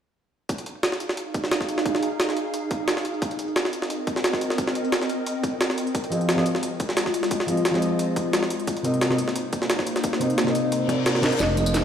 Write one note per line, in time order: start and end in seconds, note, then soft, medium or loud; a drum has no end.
0.49 3.02 D#4 medium
0.49 3.02 G#4 medium
0.49 3.02 F5 medium
0.49 kick loud
0.49 closed hi-hat medium
0.58 closed hi-hat soft
0.66 closed hi-hat medium
0.76 closed hi-hat soft
0.83 snare loud
0.83 closed hi-hat medium
0.92 snare soft
1.00 closed hi-hat medium
1.09 snare soft
1.17 closed hi-hat medium
1.34 kick medium
1.34 closed hi-hat medium
1.44 snare soft
1.51 snare loud
1.51 closed hi-hat medium
1.61 kick medium
1.61 snare soft
1.69 closed hi-hat medium
1.78 snare medium
1.78 closed hi-hat soft
1.86 kick loud
1.86 closed hi-hat medium
1.95 snare soft
2.03 closed hi-hat medium
2.12 closed hi-hat soft
2.20 snare loud
2.20 closed hi-hat medium
2.29 snare soft
2.37 closed hi-hat medium
2.54 closed hi-hat medium
2.71 kick loud
2.71 closed hi-hat medium
2.88 snare loud
2.88 closed hi-hat medium
2.97 snare soft
3.04 5.92 C4 medium
3.04 5.92 A#4 medium
3.04 5.92 D#5 medium
3.04 closed hi-hat medium
3.14 closed hi-hat soft
3.22 kick loud
3.22 closed hi-hat medium
3.31 closed hi-hat soft
3.39 closed hi-hat medium
3.48 closed hi-hat soft
3.56 snare loud
3.56 closed hi-hat medium
3.65 snare soft
3.73 closed hi-hat medium
3.82 snare soft
3.90 closed hi-hat medium
4.07 kick loud
4.07 closed hi-hat medium
4.16 snare soft
4.24 snare loud
4.24 closed hi-hat medium
4.33 kick medium
4.33 snare soft
4.41 closed hi-hat medium
4.50 snare medium
4.50 closed hi-hat soft
4.58 kick loud
4.58 closed hi-hat medium
4.67 snare soft
4.75 closed hi-hat medium
4.85 closed hi-hat soft
4.92 snare loud
4.92 closed hi-hat medium
5.02 snare soft
5.02 closed hi-hat soft
5.09 closed hi-hat medium
5.26 closed hi-hat medium
5.43 kick loud
5.43 closed hi-hat medium
5.61 snare loud
5.61 closed hi-hat medium
5.70 snare soft
5.78 closed hi-hat medium
5.87 closed hi-hat soft
5.95 8.48 G#3 medium
5.95 8.48 F4 medium
5.95 8.48 D#5 medium
5.95 kick loud
5.95 closed hi-hat medium
6.04 closed hi-hat soft
6.10 6.35 F3 medium
6.10 6.35 C4 medium
6.10 6.36 G#4 medium
6.10 6.36 D#5 medium
6.10 closed hi-hat medium
6.21 closed hi-hat soft
6.29 snare loud
6.29 closed hi-hat medium
6.36 6.42 F3 medium
6.36 6.42 C4 medium
6.36 6.43 G#4 medium
6.36 6.43 D#5 loud
6.36 snare soft
6.46 closed hi-hat medium
6.55 snare soft
6.63 closed hi-hat medium
6.80 kick loud
6.80 closed hi-hat medium
6.89 snare soft
6.97 snare loud
6.97 closed hi-hat medium
7.06 kick medium
7.06 snare soft
7.14 closed hi-hat medium
7.23 snare medium
7.23 closed hi-hat soft
7.31 kick loud
7.31 closed hi-hat medium
7.40 snare soft
7.46 7.56 F3 medium
7.46 7.57 C4 medium
7.46 7.57 G#4 medium
7.46 7.58 D#5 medium
7.46 closed hi-hat medium
7.57 closed hi-hat soft
7.65 snare loud
7.65 closed hi-hat medium
7.71 8.48 F3 medium
7.71 8.49 C4 medium
7.71 snare soft
7.75 8.50 G#4 medium
7.75 8.51 D#5 medium
7.82 closed hi-hat medium
7.99 closed hi-hat medium
8.16 kick loud
8.16 closed hi-hat medium
8.33 snare loud
8.33 closed hi-hat medium
8.43 snare soft
8.50 11.37 A#3 medium
8.50 11.37 D#4 medium
8.50 11.37 C5 medium
8.50 closed hi-hat medium
8.60 closed hi-hat soft
8.67 kick loud
8.67 closed hi-hat medium
8.77 closed hi-hat soft
8.83 9.08 C3 medium
8.83 9.08 C4 medium
8.83 9.09 A#4 medium
8.83 9.09 D#5 medium
8.83 closed hi-hat medium
8.94 closed hi-hat soft
9.01 snare loud
9.01 closed hi-hat medium
9.09 9.15 C3 medium
9.09 9.15 C4 medium
9.09 9.16 A#4 medium
9.09 9.16 D#5 loud
9.09 snare soft
9.18 closed hi-hat medium
9.28 snare soft
9.36 closed hi-hat medium
9.53 kick loud
9.53 closed hi-hat medium
9.62 snare soft
9.70 snare loud
9.70 closed hi-hat medium
9.79 kick medium
9.79 snare soft
9.87 closed hi-hat medium
9.96 snare medium
9.96 closed hi-hat soft
10.04 kick loud
10.04 closed hi-hat medium
10.13 snare soft
10.19 10.29 C3 medium
10.19 10.29 C4 medium
10.19 10.30 A#4 medium
10.19 10.30 D#5 medium
10.19 closed hi-hat medium
10.30 closed hi-hat soft
10.38 snare loud
10.38 closed hi-hat medium
10.44 10.86 C3 medium
10.44 10.87 C4 medium
10.44 snare soft
10.48 10.88 A#4 medium
10.48 10.89 D#5 medium
10.55 closed hi-hat medium
10.72 closed hi-hat medium
10.72 reverse cymbal medium
10.87 11.20 C3 medium
10.87 11.21 C4 medium
10.87 11.21 A#4 medium
10.87 11.22 D5 medium
10.87 kick medium
10.87 closed hi-hat medium
11.06 11.41 A#4 loud
11.06 snare loud
11.06 closed hi-hat medium
11.15 snare soft
11.21 11.28 C3 medium
11.21 11.28 C4 medium
11.21 11.29 A#4 medium
11.21 11.29 D#5 loud
11.21 snare medium
11.21 closed hi-hat medium
11.32 closed hi-hat soft
11.39 11.84 F1 medium
11.39 11.84 F3 medium
11.39 11.84 D#4 medium
11.39 11.84 G#4 medium
11.39 11.84 D#5 loud
11.39 snare soft
11.39 closed hi-hat medium
11.39 tambourine soft
11.39 riser medium
11.55 11.80 F3 medium
11.55 11.81 C4 medium
11.55 11.81 G#4 medium
11.55 11.82 D#5 medium
11.55 closed hi-hat medium
11.55 tambourine soft
11.66 closed hi-hat soft
11.66 tambourine medium
11.74 snare soft
11.74 closed hi-hat medium
11.74 tambourine soft